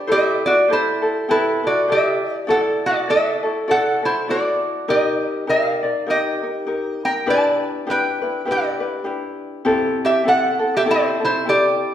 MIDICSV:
0, 0, Header, 1, 3, 480
1, 0, Start_track
1, 0, Tempo, 598802
1, 71, Time_signature, 4, 2, 24, 8
1, 9574, End_track
2, 0, Start_track
2, 0, Title_t, "Resonator guitar played with a steel bar"
2, 0, Program_c, 0, 25
2, 0, Note_on_c, 0, 72, 85
2, 90, Note_off_c, 0, 72, 0
2, 93, Note_on_c, 0, 76, 96
2, 97, Note_on_c, 0, 67, 76
2, 343, Note_off_c, 0, 76, 0
2, 345, Note_off_c, 0, 67, 0
2, 367, Note_on_c, 0, 74, 86
2, 376, Note_on_c, 0, 66, 69
2, 550, Note_off_c, 0, 66, 0
2, 564, Note_off_c, 0, 74, 0
2, 581, Note_on_c, 0, 64, 64
2, 585, Note_on_c, 0, 72, 85
2, 1013, Note_off_c, 0, 64, 0
2, 1045, Note_off_c, 0, 72, 0
2, 1048, Note_on_c, 0, 71, 95
2, 1052, Note_on_c, 0, 64, 73
2, 1302, Note_off_c, 0, 64, 0
2, 1327, Note_off_c, 0, 71, 0
2, 1336, Note_on_c, 0, 66, 59
2, 1337, Note_on_c, 0, 74, 74
2, 1509, Note_off_c, 0, 66, 0
2, 1527, Note_off_c, 0, 74, 0
2, 1538, Note_on_c, 0, 76, 80
2, 1543, Note_on_c, 0, 67, 66
2, 1875, Note_off_c, 0, 76, 0
2, 1875, Note_on_c, 0, 74, 80
2, 1971, Note_off_c, 0, 74, 0
2, 1973, Note_off_c, 0, 67, 0
2, 2007, Note_on_c, 0, 78, 87
2, 2011, Note_on_c, 0, 69, 74
2, 2080, Note_off_c, 0, 78, 0
2, 2083, Note_off_c, 0, 69, 0
2, 2294, Note_on_c, 0, 66, 65
2, 2294, Note_on_c, 0, 74, 83
2, 2467, Note_off_c, 0, 66, 0
2, 2484, Note_off_c, 0, 74, 0
2, 2484, Note_on_c, 0, 69, 66
2, 2488, Note_on_c, 0, 76, 91
2, 2923, Note_off_c, 0, 69, 0
2, 2971, Note_off_c, 0, 76, 0
2, 2972, Note_on_c, 0, 69, 75
2, 2974, Note_on_c, 0, 78, 105
2, 3221, Note_off_c, 0, 69, 0
2, 3248, Note_off_c, 0, 78, 0
2, 3248, Note_on_c, 0, 64, 62
2, 3253, Note_on_c, 0, 72, 85
2, 3423, Note_off_c, 0, 64, 0
2, 3444, Note_off_c, 0, 72, 0
2, 3449, Note_on_c, 0, 66, 61
2, 3453, Note_on_c, 0, 74, 80
2, 3885, Note_off_c, 0, 66, 0
2, 3925, Note_off_c, 0, 74, 0
2, 3928, Note_on_c, 0, 75, 91
2, 3929, Note_on_c, 0, 67, 70
2, 4365, Note_off_c, 0, 67, 0
2, 4404, Note_on_c, 0, 70, 67
2, 4407, Note_off_c, 0, 75, 0
2, 4410, Note_on_c, 0, 77, 82
2, 4842, Note_off_c, 0, 70, 0
2, 4844, Note_off_c, 0, 77, 0
2, 4890, Note_on_c, 0, 67, 67
2, 4893, Note_on_c, 0, 75, 89
2, 5606, Note_off_c, 0, 67, 0
2, 5651, Note_on_c, 0, 79, 86
2, 5654, Note_on_c, 0, 70, 62
2, 5662, Note_off_c, 0, 75, 0
2, 5826, Note_off_c, 0, 70, 0
2, 5843, Note_off_c, 0, 79, 0
2, 5853, Note_on_c, 0, 74, 77
2, 5855, Note_on_c, 0, 81, 97
2, 6287, Note_off_c, 0, 74, 0
2, 6333, Note_off_c, 0, 81, 0
2, 6333, Note_on_c, 0, 71, 63
2, 6342, Note_on_c, 0, 79, 91
2, 6767, Note_off_c, 0, 71, 0
2, 6818, Note_off_c, 0, 79, 0
2, 6820, Note_on_c, 0, 67, 63
2, 6829, Note_on_c, 0, 74, 83
2, 7251, Note_off_c, 0, 67, 0
2, 7255, Note_off_c, 0, 74, 0
2, 8053, Note_on_c, 0, 67, 68
2, 8062, Note_on_c, 0, 76, 102
2, 8227, Note_off_c, 0, 67, 0
2, 8239, Note_on_c, 0, 69, 69
2, 8244, Note_on_c, 0, 78, 96
2, 8250, Note_off_c, 0, 76, 0
2, 8588, Note_off_c, 0, 69, 0
2, 8628, Note_off_c, 0, 78, 0
2, 8630, Note_on_c, 0, 67, 83
2, 8634, Note_on_c, 0, 76, 104
2, 8670, Note_off_c, 0, 67, 0
2, 8673, Note_off_c, 0, 76, 0
2, 8742, Note_on_c, 0, 64, 77
2, 8746, Note_on_c, 0, 72, 105
2, 8988, Note_off_c, 0, 64, 0
2, 9010, Note_off_c, 0, 72, 0
2, 9014, Note_on_c, 0, 64, 68
2, 9019, Note_on_c, 0, 72, 86
2, 9188, Note_off_c, 0, 64, 0
2, 9210, Note_off_c, 0, 72, 0
2, 9210, Note_on_c, 0, 67, 72
2, 9215, Note_on_c, 0, 74, 96
2, 9574, Note_off_c, 0, 67, 0
2, 9574, Note_off_c, 0, 74, 0
2, 9574, End_track
3, 0, Start_track
3, 0, Title_t, "Ukulele"
3, 0, Program_c, 1, 24
3, 0, Note_on_c, 1, 69, 61
3, 59, Note_on_c, 1, 72, 79
3, 64, Note_on_c, 1, 64, 88
3, 70, Note_off_c, 1, 69, 0
3, 70, Note_on_c, 1, 69, 95
3, 536, Note_off_c, 1, 72, 0
3, 545, Note_on_c, 1, 72, 58
3, 546, Note_off_c, 1, 64, 0
3, 549, Note_on_c, 1, 67, 55
3, 555, Note_off_c, 1, 69, 0
3, 558, Note_on_c, 1, 64, 56
3, 562, Note_on_c, 1, 69, 65
3, 807, Note_off_c, 1, 69, 0
3, 817, Note_on_c, 1, 69, 56
3, 821, Note_off_c, 1, 64, 0
3, 823, Note_off_c, 1, 67, 0
3, 828, Note_off_c, 1, 72, 0
3, 830, Note_on_c, 1, 64, 46
3, 832, Note_on_c, 1, 67, 41
3, 1021, Note_off_c, 1, 67, 0
3, 1023, Note_off_c, 1, 69, 0
3, 1024, Note_off_c, 1, 64, 0
3, 1031, Note_on_c, 1, 67, 68
3, 1034, Note_on_c, 1, 64, 71
3, 1041, Note_on_c, 1, 69, 74
3, 1300, Note_off_c, 1, 69, 0
3, 1307, Note_off_c, 1, 64, 0
3, 1310, Note_off_c, 1, 67, 0
3, 1310, Note_on_c, 1, 69, 44
3, 1316, Note_on_c, 1, 64, 44
3, 1503, Note_on_c, 1, 72, 53
3, 1508, Note_off_c, 1, 64, 0
3, 1509, Note_off_c, 1, 69, 0
3, 1510, Note_on_c, 1, 67, 64
3, 1518, Note_on_c, 1, 64, 60
3, 1520, Note_on_c, 1, 69, 55
3, 1977, Note_off_c, 1, 72, 0
3, 1980, Note_on_c, 1, 74, 86
3, 1985, Note_off_c, 1, 67, 0
3, 1988, Note_off_c, 1, 64, 0
3, 1988, Note_on_c, 1, 66, 80
3, 1991, Note_off_c, 1, 69, 0
3, 1991, Note_on_c, 1, 64, 85
3, 1994, Note_on_c, 1, 69, 91
3, 2467, Note_off_c, 1, 66, 0
3, 2467, Note_off_c, 1, 74, 0
3, 2469, Note_off_c, 1, 64, 0
3, 2470, Note_off_c, 1, 69, 0
3, 2470, Note_on_c, 1, 74, 55
3, 2476, Note_on_c, 1, 66, 58
3, 2483, Note_on_c, 1, 69, 65
3, 2485, Note_on_c, 1, 64, 66
3, 2739, Note_off_c, 1, 69, 0
3, 2748, Note_on_c, 1, 69, 53
3, 2749, Note_off_c, 1, 74, 0
3, 2751, Note_off_c, 1, 64, 0
3, 2752, Note_off_c, 1, 66, 0
3, 2761, Note_on_c, 1, 64, 44
3, 2765, Note_on_c, 1, 66, 41
3, 2939, Note_off_c, 1, 66, 0
3, 2947, Note_off_c, 1, 69, 0
3, 2947, Note_on_c, 1, 74, 68
3, 2948, Note_off_c, 1, 64, 0
3, 2949, Note_on_c, 1, 66, 66
3, 2958, Note_on_c, 1, 64, 70
3, 2960, Note_on_c, 1, 69, 68
3, 3216, Note_off_c, 1, 69, 0
3, 3223, Note_off_c, 1, 64, 0
3, 3226, Note_on_c, 1, 69, 47
3, 3227, Note_off_c, 1, 74, 0
3, 3228, Note_off_c, 1, 66, 0
3, 3233, Note_on_c, 1, 64, 41
3, 3243, Note_on_c, 1, 66, 35
3, 3425, Note_off_c, 1, 66, 0
3, 3425, Note_off_c, 1, 69, 0
3, 3429, Note_off_c, 1, 64, 0
3, 3430, Note_on_c, 1, 74, 48
3, 3434, Note_on_c, 1, 66, 63
3, 3440, Note_on_c, 1, 64, 61
3, 3444, Note_on_c, 1, 69, 58
3, 3908, Note_off_c, 1, 64, 0
3, 3909, Note_off_c, 1, 66, 0
3, 3912, Note_off_c, 1, 74, 0
3, 3912, Note_on_c, 1, 67, 84
3, 3914, Note_off_c, 1, 69, 0
3, 3915, Note_on_c, 1, 70, 85
3, 3916, Note_on_c, 1, 63, 83
3, 4378, Note_off_c, 1, 63, 0
3, 4383, Note_off_c, 1, 70, 0
3, 4387, Note_off_c, 1, 67, 0
3, 4387, Note_on_c, 1, 63, 57
3, 4387, Note_on_c, 1, 67, 56
3, 4393, Note_on_c, 1, 70, 60
3, 4399, Note_on_c, 1, 74, 57
3, 4660, Note_off_c, 1, 74, 0
3, 4666, Note_off_c, 1, 67, 0
3, 4667, Note_off_c, 1, 63, 0
3, 4669, Note_off_c, 1, 70, 0
3, 4670, Note_on_c, 1, 74, 54
3, 4678, Note_on_c, 1, 70, 45
3, 4685, Note_on_c, 1, 63, 39
3, 4858, Note_off_c, 1, 70, 0
3, 4861, Note_on_c, 1, 67, 63
3, 4863, Note_off_c, 1, 63, 0
3, 4867, Note_off_c, 1, 74, 0
3, 4872, Note_on_c, 1, 63, 59
3, 4873, Note_on_c, 1, 70, 65
3, 5143, Note_off_c, 1, 67, 0
3, 5144, Note_off_c, 1, 70, 0
3, 5149, Note_off_c, 1, 63, 0
3, 5153, Note_on_c, 1, 70, 37
3, 5157, Note_on_c, 1, 63, 38
3, 5336, Note_off_c, 1, 63, 0
3, 5342, Note_off_c, 1, 70, 0
3, 5343, Note_on_c, 1, 67, 59
3, 5346, Note_on_c, 1, 63, 58
3, 5352, Note_on_c, 1, 70, 51
3, 5816, Note_off_c, 1, 70, 0
3, 5820, Note_off_c, 1, 67, 0
3, 5820, Note_on_c, 1, 67, 77
3, 5823, Note_off_c, 1, 63, 0
3, 5825, Note_on_c, 1, 64, 84
3, 5826, Note_on_c, 1, 62, 88
3, 5833, Note_on_c, 1, 71, 100
3, 6300, Note_off_c, 1, 62, 0
3, 6302, Note_off_c, 1, 67, 0
3, 6306, Note_on_c, 1, 67, 58
3, 6309, Note_off_c, 1, 64, 0
3, 6309, Note_off_c, 1, 71, 0
3, 6309, Note_on_c, 1, 62, 65
3, 6313, Note_on_c, 1, 64, 60
3, 6321, Note_on_c, 1, 71, 66
3, 6578, Note_off_c, 1, 71, 0
3, 6586, Note_off_c, 1, 67, 0
3, 6587, Note_on_c, 1, 71, 52
3, 6588, Note_off_c, 1, 62, 0
3, 6590, Note_off_c, 1, 64, 0
3, 6599, Note_on_c, 1, 64, 46
3, 6603, Note_on_c, 1, 62, 42
3, 6772, Note_off_c, 1, 62, 0
3, 6777, Note_on_c, 1, 67, 61
3, 6779, Note_off_c, 1, 64, 0
3, 6782, Note_on_c, 1, 62, 62
3, 6786, Note_off_c, 1, 71, 0
3, 6788, Note_on_c, 1, 64, 69
3, 6795, Note_on_c, 1, 71, 68
3, 7046, Note_off_c, 1, 71, 0
3, 7055, Note_off_c, 1, 64, 0
3, 7055, Note_on_c, 1, 71, 51
3, 7062, Note_off_c, 1, 67, 0
3, 7064, Note_off_c, 1, 62, 0
3, 7065, Note_on_c, 1, 64, 38
3, 7073, Note_on_c, 1, 62, 37
3, 7241, Note_off_c, 1, 62, 0
3, 7247, Note_on_c, 1, 67, 52
3, 7251, Note_on_c, 1, 62, 59
3, 7252, Note_off_c, 1, 64, 0
3, 7252, Note_off_c, 1, 71, 0
3, 7261, Note_on_c, 1, 64, 52
3, 7262, Note_on_c, 1, 71, 60
3, 7730, Note_off_c, 1, 67, 0
3, 7732, Note_off_c, 1, 62, 0
3, 7733, Note_on_c, 1, 67, 91
3, 7735, Note_on_c, 1, 60, 98
3, 7738, Note_off_c, 1, 64, 0
3, 7739, Note_off_c, 1, 71, 0
3, 7741, Note_on_c, 1, 64, 101
3, 7742, Note_on_c, 1, 69, 100
3, 8203, Note_off_c, 1, 67, 0
3, 8206, Note_on_c, 1, 67, 62
3, 8210, Note_off_c, 1, 64, 0
3, 8212, Note_off_c, 1, 60, 0
3, 8215, Note_on_c, 1, 60, 66
3, 8220, Note_on_c, 1, 64, 60
3, 8221, Note_off_c, 1, 69, 0
3, 8224, Note_on_c, 1, 69, 56
3, 8481, Note_off_c, 1, 69, 0
3, 8489, Note_off_c, 1, 64, 0
3, 8491, Note_on_c, 1, 69, 54
3, 8498, Note_off_c, 1, 67, 0
3, 8498, Note_on_c, 1, 64, 46
3, 8499, Note_off_c, 1, 60, 0
3, 8509, Note_on_c, 1, 60, 45
3, 8688, Note_off_c, 1, 60, 0
3, 8694, Note_on_c, 1, 67, 68
3, 8697, Note_off_c, 1, 64, 0
3, 8697, Note_on_c, 1, 60, 60
3, 8699, Note_off_c, 1, 69, 0
3, 8707, Note_on_c, 1, 64, 78
3, 8711, Note_on_c, 1, 69, 64
3, 8967, Note_off_c, 1, 69, 0
3, 8976, Note_off_c, 1, 64, 0
3, 8977, Note_on_c, 1, 69, 48
3, 8982, Note_off_c, 1, 60, 0
3, 8983, Note_off_c, 1, 67, 0
3, 8985, Note_on_c, 1, 64, 43
3, 8991, Note_on_c, 1, 60, 41
3, 9174, Note_off_c, 1, 60, 0
3, 9180, Note_off_c, 1, 64, 0
3, 9181, Note_on_c, 1, 67, 52
3, 9183, Note_off_c, 1, 69, 0
3, 9184, Note_on_c, 1, 60, 55
3, 9190, Note_on_c, 1, 64, 61
3, 9197, Note_on_c, 1, 69, 57
3, 9574, Note_off_c, 1, 60, 0
3, 9574, Note_off_c, 1, 64, 0
3, 9574, Note_off_c, 1, 67, 0
3, 9574, Note_off_c, 1, 69, 0
3, 9574, End_track
0, 0, End_of_file